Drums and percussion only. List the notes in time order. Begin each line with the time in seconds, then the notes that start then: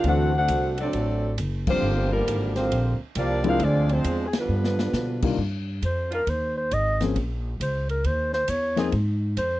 0.04 kick, ride
0.48 kick, hi-hat pedal, ride
0.78 ride
0.93 kick, ride
1.38 kick, hi-hat pedal, ride
1.67 kick, crash
2.27 kick, hi-hat pedal, ride
2.56 snare, ride
2.72 kick, ride
3.15 kick, hi-hat pedal, ride
3.44 ride
3.59 kick, ride
3.89 ride
4.04 kick, hi-hat pedal, ride
4.33 snare, ride
4.64 snare
4.79 snare
4.93 snare, hi-hat pedal
5.22 kick, crash
5.38 kick
5.82 kick, hi-hat pedal, ride
6.12 ride
6.27 kick, ride
6.71 kick, hi-hat pedal, ride
7.00 snare, ride
7.16 kick, ride
7.60 kick, hi-hat pedal, ride
7.89 ride
8.04 kick, ride
8.33 snare
8.48 kick, hi-hat pedal, ride
8.77 snare, ride
8.92 kick, ride
9.37 kick, hi-hat pedal, ride